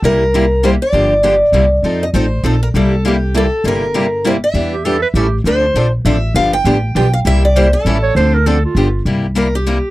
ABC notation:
X:1
M:3/4
L:1/16
Q:"Swing" 1/4=199
K:Cmix
V:1 name="Steel-string acoustic guitar"
B8 c2 d2- | d8- d2 z2 | z2 _e2 c4 A2 B2 | A4 G4 A4 |
B8 c2 e2- | e8- e2 z2 | c6 z2 e4 | f2 g6 g2 f2 |
e2 d2 c2 A6- | A8- A2 z2 | z4 B2 G6 |]
V:2 name="Clarinet"
z12 | z12 | z12 | z12 |
z12 | z2 G2 A2 =B2 G3 z | z12 | z12 |
z8 z2 ^c2 | c2 B2 A2 F6 | z12 |]
V:3 name="Steel-string acoustic guitar"
[C,G,B,EG]2 z2 [C,G,B,EG]2 z2 [C,G,B,EG]2 z2 | [D,F,B,DG]2 z2 [D,F,B,DG]2 z2 [C,G,B,EG]2 z2 | [F,C_EA]2 z2 [F,CEA]2 z2 [F,CEA]2 z2 | [C,G,B,EG]2 z2 [C,G,B,EG]2 z2 [C,G,B,EG]2 z2 |
[C,G,B,EG]2 z2 [C,G,B,EG]2 z2 [C,G,B,EG]2 z2 | [E,=B,DG]2 z2 [E,B,DG]2 z2 [E,G,^CEA]2 z2 | [D,F,CDA]2 z2 [D,F,CDA]2 z2 [D,F,CDA]2 z2 | [D,F,=B,DG]2 z2 [D,F,B,DG]2 z2 [D,F,B,DG]2 z2 |
[C,G,B,EG]2 z2 [C,G,B,EG]2 z2 [E,G,^CEA]2 z2 | [D,F,CDA]2 z2 [D,F,CDA]2 z2 [D,F,=B,DG]2 z2 | [C,G,B,EG]2 z2 [C,G,B,EG]2 z2 [C,G,B,EG]2 z2 |]
V:4 name="Steel-string acoustic guitar"
[C,G,B,EG]2 z2 [C,G,B,EG]2 z2 [C,G,B,EG]2 z2 | [D,F,B,DG]2 z2 [D,F,B,DG]2 z2 [C,G,B,EG]2 z2 | [F,C_EA]2 z2 [F,CEA]2 z2 [F,CEA]2 z2 | [C,G,B,EG]2 z2 [C,G,B,EG]2 z2 [C,G,B,EG]2 z2 |
[C,G,B,EG]2 z2 [C,G,B,EG]2 z2 [C,G,B,EG]2 z2 | [E,G,DE=B]2 z2 [E,G,DEB]2 z2 [E,G,^CEA]2 z2 | [D,F,CDA]2 z2 [D,F,CDA]2 z2 [D,F,CDA]2 z2 | [D,F,=B,DG]2 z2 [D,F,B,DG]2 z2 [D,F,B,DG]2 z2 |
[C,G,B,EG]2 z2 [C,G,B,EG]2 z2 [E,G,^CEA]2 z2 | [D,F,CDA]2 z2 [D,F,CDA]2 z2 [D,F,=B,DG]2 z2 | z12 |]
V:5 name="Upright bass" clef=bass
C,,12 | G,,,8 C,,4 | F,,4 A,,,4 B,,,4 | C,,12 |
G,,,12 | E,,8 A,,,4 | D,,4 B,,,4 A,,,4 | G,,,4 A,,,4 =B,,,4 |
C,,8 A,,,4 | D,,8 G,,,4 | C,,12 |]